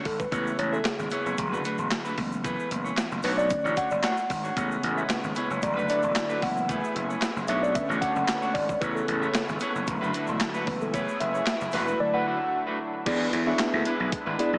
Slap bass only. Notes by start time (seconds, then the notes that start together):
0.05 G#1
0.32 A1
0.59 A1
0.99 G#1
1.26 F#1
1.38 E1
1.52 F#1
1.79 E1
2.18 F#1
2.71 F#1
3.11 F#1
3.24 B1
3.65 A1
3.91 F#1
4.30 G#1
4.57 A1
4.83 A1
5.24 G#1
5.50 F#1
5.63 E1
5.77 F#1
6.03 E1
6.42 F#1
6.96 F#1
7.36 F#1
7.48 B1
7.89 A1
8.16 F#1
8.55 G#1
8.81 A1
9.08 A1
9.49 G#1
9.75 F#1
9.88 E1
10.02 F#1
10.28 E1
10.67 F#1
11.20 F#1
11.61 F#1
11.73 E1
13.06 E2
13.33 E2
13.73 D2
14.00 B1
14.26 G#1
14.53 B1